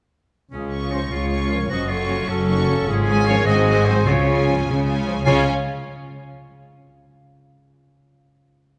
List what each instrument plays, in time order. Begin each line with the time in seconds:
0.51 double bass section C#2, cello section C#2, harp C#3, oboe C#4, flute F4, trumpet section G#4
0.72 harp C#4, viola section C#4, violin section F4 C#6
0.91 trombone section F3 C#4, oboe D#4, flute G#4, trumpet section C5
1.10 cello section C#2, double bass section C#2, oboe F4, harp F4, french horn section F4, flute G#4, trumpet section C#5
1.31 viola section C#4, violin section F4 C#6
1.50 trombone section F3 C#4, harp G#3, oboe F4, flute A#4, trumpet section C#5
1.69 double bass section F#1, cello section F#2, harp F#2, french horn section F#3, viola section C#4, oboe F#4, violin section F#4 C#6, flute C5, trumpet section D#5
1.89 harp C#4, viola section C#4, oboe F4, violin section F#4 C#6, flute A4, trumpet section C#5
2.08 trombone section F#3 C#4, harp C#5
2.28 double bass section F#1, cello section F#2, oboe C#4, harp F#4, french horn section F#4, flute F#4, trumpet section A4
2.47 harp C#4, viola section C#4, french horn section D#4, violin section F#4 C#6
2.66 harp C#3, trombone section F#3 C#4, french horn section C#4
2.86 double bass section G#1, harp G#2, cello section G#2, oboe C#4, flute F4, french horn section G#4, trumpet section G#4
3.06 harp C#4, viola section C#4, violin section F4 G#5
3.25 trombone section C#4, oboe F4, harp F4 G#4, flute A#4, trumpet section C#5
3.29 trombone section F3
3.45 double bass section G#1, cello section G#2, harp G#2, viola section C4, oboe F#4, flute C5, trumpet section D#5, violin section G#5
3.49 violin section F#4
3.65 harp C4, viola section C4, violin section F#4 G#5
3.85 trombone section F#3 C4, oboe D#4, harp F#4 G#4, flute G#4, trumpet section C5
4.05 double bass section C#2, harp C#3, cello section C#3, oboe F4, french horn section F4, flute G#4, trumpet section C#5
4.26 harp C#4, viola section C#4, violin section F4 G#5
4.46 trombone section F3 C#4
4.66 double bass section C#2, cello section C#3, harp C#5
4.86 viola section C#4, harp F4, violin section F4 G#5
5.05 trombone section F3 C#4
5.22 harp C#3 C#4, cello section C#3, french horn section C#4 F4, oboe F4, flute C#5, violin section G#5
5.26 double bass section C#2, trombone section C#3 G#3, viola section C#4, harp F4 G#4 F5, violin section F4, trumpet section C#5